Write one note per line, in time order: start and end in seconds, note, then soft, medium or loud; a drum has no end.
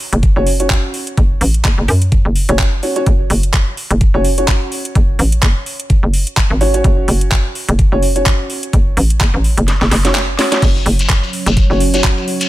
0.00 0.33 C#4 medium
0.00 0.33 F#4 medium
0.00 0.33 C#5 medium
0.13 0.34 F#1 medium
0.13 closed hi-hat medium
0.23 kick loud
0.23 closed hi-hat soft
0.36 0.69 F#1 medium
0.36 0.45 C#4 medium
0.36 0.45 F#4 medium
0.36 0.45 C#5 loud
0.47 open hi-hat loud
0.60 2.46 C#4 medium
0.60 2.46 F#4 medium
0.60 2.46 C#5 medium
0.60 closed hi-hat medium
0.70 kick loud
0.70 clap loud
0.70 closed hi-hat soft
0.94 open hi-hat medium
1.07 closed hi-hat medium
1.17 1.39 F#1 loud
1.17 kick loud
1.17 closed hi-hat medium
1.41 1.63 A1 medium
1.41 open hi-hat loud
1.54 closed hi-hat medium
1.65 1.76 F#1 loud
1.65 kick loud
1.65 clap loud
1.65 closed hi-hat medium
1.78 1.87 F#1 loud
1.88 2.23 F#2 medium
1.88 open hi-hat loud
2.02 closed hi-hat medium
2.12 kick loud
2.12 closed hi-hat soft
2.25 2.47 F#1 loud
2.36 open hi-hat loud
2.49 2.81 F#1 loud
2.49 2.58 C#4 medium
2.49 2.58 F#4 medium
2.49 2.58 C#5 medium
2.49 closed hi-hat medium
2.59 kick loud
2.59 clap loud
2.59 closed hi-hat medium
2.83 2.94 C#4 medium
2.83 2.94 F#4 medium
2.83 2.94 C#5 medium
2.83 open hi-hat medium
2.96 3.05 C#4 medium
2.96 3.05 F#4 medium
2.96 3.05 C#5 loud
2.96 closed hi-hat medium
3.06 3.28 F#1 loud
3.06 kick loud
3.06 closed hi-hat medium
3.30 3.65 F#1 loud
3.30 open hi-hat loud
3.43 closed hi-hat medium
3.54 kick loud
3.54 clap loud
3.54 closed hi-hat medium
3.77 open hi-hat medium
3.91 4.12 F#1 loud
3.91 closed hi-hat medium
4.01 kick loud
4.01 closed hi-hat soft
4.14 4.47 F#1 medium
4.14 4.23 C#4 medium
4.14 4.23 F#4 medium
4.14 4.23 C#5 loud
4.25 open hi-hat loud
4.38 6.58 C#4 medium
4.38 6.58 F#4 medium
4.38 6.58 C#5 medium
4.38 closed hi-hat medium
4.48 kick loud
4.48 clap loud
4.48 closed hi-hat medium
4.72 open hi-hat medium
4.85 closed hi-hat medium
4.95 5.17 F#1 medium
4.95 kick loud
4.95 closed hi-hat medium
5.19 5.41 A1 medium
5.19 open hi-hat loud
5.32 closed hi-hat medium
5.43 5.54 F#1 loud
5.43 kick loud
5.43 clap loud
5.43 closed hi-hat medium
5.66 open hi-hat medium
5.80 closed hi-hat medium
5.90 kick loud
5.90 closed hi-hat soft
6.03 6.25 F#1 medium
6.14 open hi-hat loud
6.27 closed hi-hat medium
6.37 kick loud
6.37 clap loud
6.37 closed hi-hat medium
6.50 6.83 G#1 loud
6.61 6.72 C#4 medium
6.61 6.72 F#4 medium
6.61 6.72 C#5 loud
6.61 open hi-hat medium
6.74 7.89 C#4 medium
6.74 7.89 F#4 medium
6.74 7.89 C#5 loud
6.74 closed hi-hat medium
6.84 7.06 F#1 loud
6.84 kick loud
6.84 closed hi-hat medium
7.08 7.43 F#1 medium
7.08 open hi-hat loud
7.21 closed hi-hat medium
7.32 kick loud
7.32 clap loud
7.32 closed hi-hat medium
7.55 open hi-hat medium
7.69 7.90 F#1 loud
7.69 closed hi-hat medium
7.79 kick loud
7.79 closed hi-hat medium
7.92 8.24 F#1 loud
7.92 8.01 C#4 medium
7.92 8.01 F#4 medium
7.92 8.01 C#5 loud
8.02 open hi-hat loud
8.16 10.02 C#4 medium
8.16 10.02 F#4 medium
8.16 10.02 C#5 medium
8.16 closed hi-hat medium
8.26 kick loud
8.26 clap loud
8.26 closed hi-hat medium
8.50 open hi-hat medium
8.63 closed hi-hat medium
8.73 8.95 F#1 medium
8.73 kick loud
8.73 closed hi-hat medium
8.97 9.19 A1 loud
8.97 open hi-hat loud
9.10 closed hi-hat medium
9.21 9.32 F#1 loud
9.21 kick loud
9.21 clap loud
9.21 closed hi-hat medium
9.34 9.55 A1 loud
9.44 open hi-hat medium
9.57 9.79 F#1 loud
9.57 closed hi-hat medium
9.68 snare medium
9.68 closed hi-hat medium
9.81 9.90 F#1 loud
9.81 snare medium
9.91 10.37 F#1 loud
9.91 snare medium
9.91 open hi-hat loud
10.05 10.14 C#4 medium
10.05 10.14 F#4 medium
10.05 10.14 C#5 medium
10.05 snare medium
10.05 closed hi-hat medium
10.15 snare medium
10.15 clap loud
10.15 closed hi-hat medium
10.39 10.50 C#4 medium
10.39 10.50 F#4 medium
10.39 10.50 C#5 medium
10.39 snare loud
10.39 open hi-hat medium
10.52 10.61 C#4 medium
10.52 10.61 F#4 medium
10.52 10.61 C#5 loud
10.52 snare medium
10.52 closed hi-hat medium
10.62 10.84 F#1 medium
10.62 12.49 F#3 medium
10.62 12.49 C#4 medium
10.62 12.49 C#5 medium
10.62 kick loud
10.62 closed hi-hat medium
10.62 crash medium
10.62 shekere medium
10.76 shekere soft
10.86 11.21 F#1 medium
10.86 open hi-hat loud
10.99 closed hi-hat medium
10.99 shekere medium
11.09 kick loud
11.09 clap loud
11.09 closed hi-hat medium
11.09 shekere medium
11.23 shekere soft
11.33 open hi-hat medium
11.46 11.68 F#1 medium
11.46 closed hi-hat medium
11.46 shekere medium
11.57 kick loud
11.57 closed hi-hat medium
11.57 shekere medium
11.70 12.02 F#1 loud
11.70 11.79 C#4 medium
11.70 11.79 F#4 medium
11.70 11.79 C#5 loud
11.70 shekere soft
11.80 open hi-hat loud
11.94 12.49 C#4 medium
11.94 12.49 F#4 medium
11.94 12.49 C#5 medium
11.94 closed hi-hat medium
11.94 shekere medium
12.04 kick loud
12.04 clap loud
12.04 closed hi-hat medium
12.17 shekere soft
12.28 open hi-hat medium
12.40 closed hi-hat medium
12.40 shekere medium